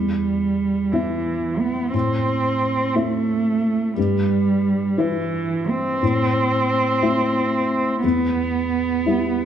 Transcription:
0, 0, Header, 1, 3, 480
1, 0, Start_track
1, 0, Key_signature, 1, "minor"
1, 0, Tempo, 680272
1, 1365, Time_signature, 6, 3, 24, 8
1, 6668, End_track
2, 0, Start_track
2, 0, Title_t, "Felt piano"
2, 0, Program_c, 0, 0
2, 0, Note_on_c, 0, 40, 34
2, 45, Control_c, 0, 64, 127
2, 618, Note_off_c, 0, 40, 0
2, 655, Note_on_c, 0, 59, 30
2, 656, Note_on_c, 0, 64, 30
2, 663, Note_on_c, 0, 76, 36
2, 1344, Note_off_c, 0, 59, 0
2, 1344, Note_off_c, 0, 64, 0
2, 1347, Note_off_c, 0, 76, 0
2, 1367, Note_on_c, 0, 45, 41
2, 1378, Control_c, 0, 64, 0
2, 1489, Control_c, 0, 64, 127
2, 2063, Note_off_c, 0, 45, 0
2, 2082, Note_on_c, 0, 60, 36
2, 2085, Note_on_c, 0, 64, 36
2, 2090, Note_on_c, 0, 76, 37
2, 2770, Note_off_c, 0, 60, 0
2, 2771, Note_off_c, 0, 64, 0
2, 2774, Note_off_c, 0, 76, 0
2, 2803, Note_on_c, 0, 43, 47
2, 2811, Control_c, 0, 64, 0
2, 2931, Control_c, 0, 64, 127
2, 3492, Note_off_c, 0, 43, 0
2, 3512, Note_on_c, 0, 71, 42
2, 3514, Note_on_c, 0, 64, 39
2, 3518, Note_on_c, 0, 76, 37
2, 4217, Note_off_c, 0, 71, 0
2, 4218, Note_off_c, 0, 64, 0
2, 4220, Note_off_c, 0, 76, 0
2, 4251, Note_on_c, 0, 45, 46
2, 4258, Control_c, 0, 64, 0
2, 4386, Control_c, 0, 64, 127
2, 4937, Note_off_c, 0, 45, 0
2, 4956, Note_on_c, 0, 57, 35
2, 4956, Note_on_c, 0, 76, 42
2, 4958, Note_on_c, 0, 64, 39
2, 5638, Note_off_c, 0, 57, 0
2, 5638, Note_off_c, 0, 76, 0
2, 5639, Note_off_c, 0, 64, 0
2, 5669, Note_on_c, 0, 40, 45
2, 5679, Control_c, 0, 64, 0
2, 5810, Control_c, 0, 64, 127
2, 6368, Note_off_c, 0, 40, 0
2, 6391, Note_on_c, 0, 55, 35
2, 6394, Note_on_c, 0, 64, 33
2, 6397, Note_on_c, 0, 76, 38
2, 6668, Note_off_c, 0, 55, 0
2, 6668, Note_off_c, 0, 64, 0
2, 6668, Note_off_c, 0, 76, 0
2, 6668, End_track
3, 0, Start_track
3, 0, Title_t, "Cello"
3, 0, Program_c, 1, 42
3, 0, Note_on_c, 1, 55, 57
3, 646, Note_on_c, 1, 52, 52
3, 657, Note_off_c, 1, 55, 0
3, 1126, Note_on_c, 1, 59, 56
3, 1137, Note_off_c, 1, 52, 0
3, 1364, Note_off_c, 1, 59, 0
3, 1368, Note_on_c, 1, 60, 69
3, 2087, Note_on_c, 1, 57, 71
3, 2097, Note_off_c, 1, 60, 0
3, 2801, Note_off_c, 1, 57, 0
3, 2813, Note_on_c, 1, 55, 65
3, 3521, Note_on_c, 1, 52, 69
3, 3532, Note_off_c, 1, 55, 0
3, 4017, Note_on_c, 1, 60, 79
3, 4027, Note_off_c, 1, 52, 0
3, 5665, Note_off_c, 1, 60, 0
3, 5669, Note_on_c, 1, 59, 78
3, 6668, Note_off_c, 1, 59, 0
3, 6668, End_track
0, 0, End_of_file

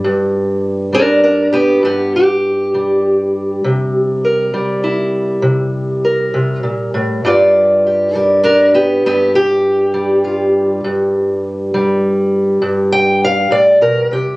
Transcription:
0, 0, Header, 1, 2, 480
1, 0, Start_track
1, 0, Tempo, 599401
1, 27, Time_signature, 12, 3, 24, 8
1, 11503, End_track
2, 0, Start_track
2, 0, Title_t, "Steel-string acoustic guitar"
2, 0, Program_c, 0, 25
2, 0, Note_on_c, 0, 55, 58
2, 35, Note_on_c, 0, 43, 73
2, 732, Note_off_c, 0, 55, 0
2, 741, Note_on_c, 0, 55, 58
2, 757, Note_on_c, 0, 62, 79
2, 758, Note_on_c, 0, 70, 93
2, 981, Note_off_c, 0, 62, 0
2, 982, Note_off_c, 0, 70, 0
2, 990, Note_on_c, 0, 62, 68
2, 993, Note_on_c, 0, 70, 74
2, 1219, Note_off_c, 0, 70, 0
2, 1222, Note_on_c, 0, 67, 96
2, 1226, Note_off_c, 0, 55, 0
2, 1229, Note_on_c, 0, 59, 85
2, 1231, Note_off_c, 0, 62, 0
2, 1454, Note_off_c, 0, 43, 0
2, 1463, Note_on_c, 0, 43, 70
2, 1467, Note_off_c, 0, 67, 0
2, 1470, Note_off_c, 0, 59, 0
2, 1479, Note_on_c, 0, 59, 71
2, 1484, Note_on_c, 0, 67, 77
2, 1716, Note_off_c, 0, 59, 0
2, 1718, Note_off_c, 0, 67, 0
2, 1729, Note_on_c, 0, 67, 84
2, 2197, Note_on_c, 0, 55, 64
2, 2910, Note_off_c, 0, 43, 0
2, 2918, Note_on_c, 0, 48, 77
2, 3162, Note_off_c, 0, 67, 0
2, 3400, Note_on_c, 0, 70, 48
2, 3629, Note_off_c, 0, 55, 0
2, 3633, Note_on_c, 0, 55, 57
2, 3873, Note_on_c, 0, 64, 51
2, 4332, Note_off_c, 0, 48, 0
2, 4342, Note_on_c, 0, 48, 74
2, 4832, Note_off_c, 0, 70, 0
2, 4842, Note_on_c, 0, 70, 48
2, 5066, Note_off_c, 0, 48, 0
2, 5076, Note_on_c, 0, 48, 65
2, 5307, Note_off_c, 0, 48, 0
2, 5310, Note_on_c, 0, 46, 60
2, 5552, Note_off_c, 0, 46, 0
2, 5558, Note_on_c, 0, 45, 71
2, 5765, Note_off_c, 0, 64, 0
2, 5769, Note_off_c, 0, 70, 0
2, 5796, Note_off_c, 0, 45, 0
2, 5801, Note_off_c, 0, 55, 0
2, 5802, Note_on_c, 0, 43, 82
2, 5804, Note_on_c, 0, 55, 50
2, 5815, Note_on_c, 0, 65, 58
2, 5819, Note_on_c, 0, 67, 50
2, 5826, Note_on_c, 0, 74, 57
2, 6296, Note_off_c, 0, 67, 0
2, 6299, Note_on_c, 0, 67, 46
2, 6512, Note_off_c, 0, 65, 0
2, 6512, Note_on_c, 0, 62, 81
2, 6523, Note_off_c, 0, 67, 0
2, 6523, Note_on_c, 0, 70, 94
2, 6525, Note_off_c, 0, 55, 0
2, 6528, Note_on_c, 0, 55, 61
2, 6745, Note_off_c, 0, 62, 0
2, 6753, Note_off_c, 0, 70, 0
2, 6755, Note_on_c, 0, 62, 80
2, 6763, Note_on_c, 0, 70, 91
2, 6993, Note_off_c, 0, 62, 0
2, 6997, Note_off_c, 0, 70, 0
2, 6999, Note_off_c, 0, 55, 0
2, 7002, Note_on_c, 0, 59, 72
2, 7006, Note_on_c, 0, 67, 78
2, 7237, Note_off_c, 0, 59, 0
2, 7238, Note_off_c, 0, 67, 0
2, 7252, Note_off_c, 0, 43, 0
2, 7255, Note_on_c, 0, 43, 76
2, 7257, Note_on_c, 0, 59, 81
2, 7260, Note_on_c, 0, 67, 94
2, 7481, Note_off_c, 0, 67, 0
2, 7483, Note_off_c, 0, 59, 0
2, 7490, Note_on_c, 0, 67, 108
2, 7958, Note_on_c, 0, 55, 71
2, 8202, Note_on_c, 0, 65, 47
2, 8647, Note_off_c, 0, 65, 0
2, 8657, Note_off_c, 0, 74, 0
2, 8673, Note_off_c, 0, 43, 0
2, 8683, Note_on_c, 0, 43, 75
2, 8919, Note_off_c, 0, 67, 0
2, 9392, Note_off_c, 0, 55, 0
2, 9401, Note_on_c, 0, 55, 64
2, 10094, Note_off_c, 0, 43, 0
2, 10103, Note_on_c, 0, 43, 71
2, 10350, Note_on_c, 0, 79, 99
2, 10587, Note_off_c, 0, 79, 0
2, 10606, Note_on_c, 0, 77, 87
2, 10813, Note_off_c, 0, 43, 0
2, 10816, Note_on_c, 0, 45, 63
2, 10826, Note_on_c, 0, 74, 80
2, 10835, Note_off_c, 0, 77, 0
2, 11058, Note_off_c, 0, 45, 0
2, 11061, Note_on_c, 0, 47, 64
2, 11064, Note_off_c, 0, 74, 0
2, 11067, Note_on_c, 0, 70, 84
2, 11298, Note_off_c, 0, 47, 0
2, 11301, Note_on_c, 0, 48, 62
2, 11305, Note_off_c, 0, 70, 0
2, 11314, Note_on_c, 0, 67, 78
2, 11503, Note_off_c, 0, 48, 0
2, 11503, Note_off_c, 0, 55, 0
2, 11503, Note_off_c, 0, 67, 0
2, 11503, End_track
0, 0, End_of_file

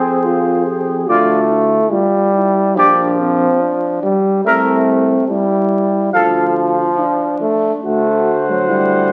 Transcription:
0, 0, Header, 1, 6, 480
1, 0, Start_track
1, 0, Tempo, 841515
1, 621, Time_signature, 4, 2, 24, 8
1, 3501, Tempo, 854701
1, 5177, End_track
2, 0, Start_track
2, 0, Title_t, "Cornet"
2, 0, Program_c, 0, 56
2, 0, Note_on_c, 0, 72, 64
2, 520, Note_off_c, 0, 72, 0
2, 617, Note_on_c, 0, 74, 70
2, 795, Note_off_c, 0, 74, 0
2, 1585, Note_on_c, 0, 74, 71
2, 1762, Note_off_c, 0, 74, 0
2, 2547, Note_on_c, 0, 76, 62
2, 2723, Note_off_c, 0, 76, 0
2, 3497, Note_on_c, 0, 77, 67
2, 3676, Note_off_c, 0, 77, 0
2, 4463, Note_on_c, 0, 78, 65
2, 5177, Note_off_c, 0, 78, 0
2, 5177, End_track
3, 0, Start_track
3, 0, Title_t, "Trumpet"
3, 0, Program_c, 1, 56
3, 0, Note_on_c, 1, 68, 66
3, 598, Note_off_c, 1, 68, 0
3, 625, Note_on_c, 1, 65, 59
3, 800, Note_off_c, 1, 65, 0
3, 1582, Note_on_c, 1, 67, 72
3, 1760, Note_off_c, 1, 67, 0
3, 2548, Note_on_c, 1, 70, 72
3, 2723, Note_off_c, 1, 70, 0
3, 3505, Note_on_c, 1, 69, 68
3, 3681, Note_off_c, 1, 69, 0
3, 4462, Note_on_c, 1, 72, 74
3, 5177, Note_off_c, 1, 72, 0
3, 5177, End_track
4, 0, Start_track
4, 0, Title_t, "French horn"
4, 0, Program_c, 2, 60
4, 0, Note_on_c, 2, 68, 68
4, 131, Note_off_c, 2, 68, 0
4, 138, Note_on_c, 2, 65, 70
4, 376, Note_off_c, 2, 65, 0
4, 379, Note_on_c, 2, 67, 68
4, 617, Note_on_c, 2, 65, 68
4, 626, Note_off_c, 2, 67, 0
4, 849, Note_off_c, 2, 65, 0
4, 853, Note_on_c, 2, 64, 61
4, 1086, Note_on_c, 2, 65, 70
4, 1095, Note_off_c, 2, 64, 0
4, 1332, Note_off_c, 2, 65, 0
4, 1336, Note_on_c, 2, 64, 70
4, 1578, Note_on_c, 2, 62, 68
4, 1587, Note_off_c, 2, 64, 0
4, 1825, Note_on_c, 2, 60, 71
4, 1833, Note_off_c, 2, 62, 0
4, 2061, Note_on_c, 2, 62, 72
4, 2070, Note_off_c, 2, 60, 0
4, 2387, Note_off_c, 2, 62, 0
4, 2543, Note_on_c, 2, 60, 76
4, 2999, Note_off_c, 2, 60, 0
4, 3024, Note_on_c, 2, 64, 76
4, 3494, Note_off_c, 2, 64, 0
4, 3503, Note_on_c, 2, 65, 79
4, 3980, Note_on_c, 2, 62, 78
4, 3988, Note_off_c, 2, 65, 0
4, 4453, Note_off_c, 2, 62, 0
4, 4456, Note_on_c, 2, 66, 78
4, 4935, Note_on_c, 2, 64, 69
4, 4943, Note_off_c, 2, 66, 0
4, 5177, Note_off_c, 2, 64, 0
4, 5177, End_track
5, 0, Start_track
5, 0, Title_t, "Trombone"
5, 0, Program_c, 3, 57
5, 0, Note_on_c, 3, 60, 91
5, 462, Note_off_c, 3, 60, 0
5, 614, Note_on_c, 3, 57, 93
5, 1093, Note_on_c, 3, 55, 97
5, 1101, Note_off_c, 3, 57, 0
5, 1571, Note_on_c, 3, 53, 98
5, 1580, Note_off_c, 3, 55, 0
5, 2294, Note_off_c, 3, 53, 0
5, 2298, Note_on_c, 3, 55, 89
5, 2533, Note_off_c, 3, 55, 0
5, 2536, Note_on_c, 3, 57, 99
5, 3009, Note_off_c, 3, 57, 0
5, 3013, Note_on_c, 3, 55, 91
5, 3488, Note_off_c, 3, 55, 0
5, 3498, Note_on_c, 3, 53, 93
5, 4204, Note_off_c, 3, 53, 0
5, 4213, Note_on_c, 3, 57, 86
5, 4393, Note_off_c, 3, 57, 0
5, 4465, Note_on_c, 3, 57, 92
5, 4823, Note_on_c, 3, 54, 73
5, 4831, Note_off_c, 3, 57, 0
5, 4931, Note_off_c, 3, 54, 0
5, 4935, Note_on_c, 3, 55, 81
5, 5177, Note_off_c, 3, 55, 0
5, 5177, End_track
6, 0, Start_track
6, 0, Title_t, "Bass trombone"
6, 0, Program_c, 4, 57
6, 0, Note_on_c, 4, 41, 58
6, 598, Note_off_c, 4, 41, 0
6, 622, Note_on_c, 4, 38, 73
6, 1020, Note_off_c, 4, 38, 0
6, 1578, Note_on_c, 4, 34, 66
6, 1982, Note_off_c, 4, 34, 0
6, 2549, Note_on_c, 4, 36, 73
6, 2945, Note_off_c, 4, 36, 0
6, 3509, Note_on_c, 4, 38, 61
6, 3904, Note_off_c, 4, 38, 0
6, 4469, Note_on_c, 4, 38, 63
6, 5177, Note_off_c, 4, 38, 0
6, 5177, End_track
0, 0, End_of_file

